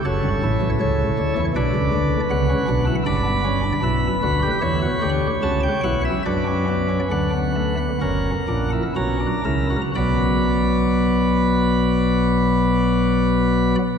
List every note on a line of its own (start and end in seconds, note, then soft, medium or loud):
0.05 0.21 F#1 medium
0.05 0.21 F#2 medium
0.05 0.28 F#4 medium
0.05 1.34 A4 medium
0.05 0.69 C#5 medium
0.24 0.40 G1 medium
0.24 0.40 G2 medium
0.43 0.59 A1 medium
0.43 0.59 A2 medium
0.43 1.40 E4 medium
0.61 0.77 B1 medium
0.61 0.77 B2 medium
0.80 1.03 C#2 medium
0.80 1.03 C#3 medium
0.80 1.45 C#5 medium
1.18 1.34 D2 medium
1.18 1.34 D3 medium
1.37 1.53 E2 medium
1.37 1.53 E3 medium
1.56 1.72 B1 medium
1.56 1.72 B2 medium
1.56 2.20 D4 medium
1.56 2.85 B4 medium
1.56 2.20 D5 medium
1.75 1.90 C#2 medium
1.75 1.90 C#3 medium
1.93 2.16 D2 medium
1.93 2.16 D3 medium
2.30 2.54 C#2 medium
2.30 2.54 C#3 medium
2.30 2.46 B3 medium
2.30 2.95 F#5 medium
2.49 2.65 C#4 medium
2.68 2.91 B1 medium
2.68 2.91 B2 medium
2.68 2.84 D4 medium
2.87 3.03 E4 medium
3.06 3.72 G1 medium
3.06 3.72 G2 medium
3.06 3.22 D4 loud
3.06 3.72 D5 medium
3.06 5.09 B5 medium
3.26 3.42 B3 medium
3.44 3.61 C#4 medium
3.63 3.80 D4 medium
3.83 4.07 B1 medium
3.83 4.07 B2 medium
3.83 4.07 E4 medium
3.83 4.50 B4 medium
4.23 4.47 D2 medium
4.23 4.47 D3 medium
4.23 4.39 F#4 medium
4.42 4.59 G4 medium
4.61 4.86 E2 medium
4.61 4.86 E3 medium
4.61 4.78 E4 medium
4.61 6.03 C#5 medium
4.82 4.99 F#4 medium
5.02 5.27 D2 medium
5.02 5.27 D3 medium
5.02 5.27 G4 medium
5.43 5.68 C#2 medium
5.43 5.68 C#3 medium
5.43 5.68 F#4 medium
5.43 5.60 A5 medium
5.63 5.81 G5 medium
5.83 6.09 B1 medium
5.83 6.09 B2 medium
5.83 6.09 E4 loud
5.83 6.01 F#5 medium
6.05 6.22 E5 medium
6.25 6.99 F#2 medium
6.25 6.99 F#3 medium
6.25 6.44 D4 medium
6.25 7.77 B4 medium
6.25 6.99 D5 medium
6.47 6.65 C#4 medium
6.68 6.87 B3 medium
6.89 7.08 C#4 medium
7.11 7.88 D2 medium
7.11 7.88 D3 medium
7.11 7.30 D4 medium
7.11 8.70 F#5 medium
7.33 7.52 B3 medium
7.56 7.75 A3 medium
7.78 7.98 B3 medium
8.01 8.30 F#1 medium
8.01 8.30 F#2 medium
8.01 8.30 C#4 medium
8.01 8.83 A#4 medium
8.48 8.78 A#1 medium
8.48 8.78 A#2 medium
8.48 8.68 D4 medium
8.72 8.93 E4 medium
8.96 9.26 B1 medium
8.96 9.26 B2 medium
8.96 9.17 C#4 medium
8.96 9.26 F#4 medium
8.96 9.81 A#5 medium
9.20 9.41 D4 medium
9.45 9.76 C#2 medium
9.45 9.76 C#3 medium
9.45 9.66 E4 medium
9.45 9.76 A#4 medium
9.70 9.92 F#4 medium
9.95 13.75 B1 medium
9.95 13.75 B2 medium
9.95 13.78 F#3 medium
9.95 13.78 B3 medium
9.95 13.75 F#4 medium
9.95 13.75 D5 medium
9.95 13.75 B5 medium